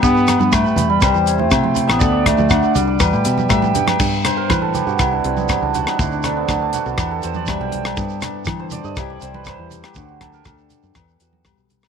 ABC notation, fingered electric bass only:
X:1
M:4/4
L:1/16
Q:1/4=121
K:G
V:1 name="Fingered electric bass" clef=bass
G,,3 G,,2 z E,,2 C,, E,,3 C,3 A,,, | D,,3 D,,2 z C,,2 E,, A,, B,,2 A,,2 G,,2 | G,,2 z2 E,3 G,, C,,2 C,,3 ^C,,2 z | D,,4 D,,2 z B,,, E,,2 E,,3 B,,,3 |
G,,2 z2 E,3 G,, C,,2 C,,3 E,,2 z | D,,4 D,,2 z F,, E,,2 E,,3 B,,,3 |]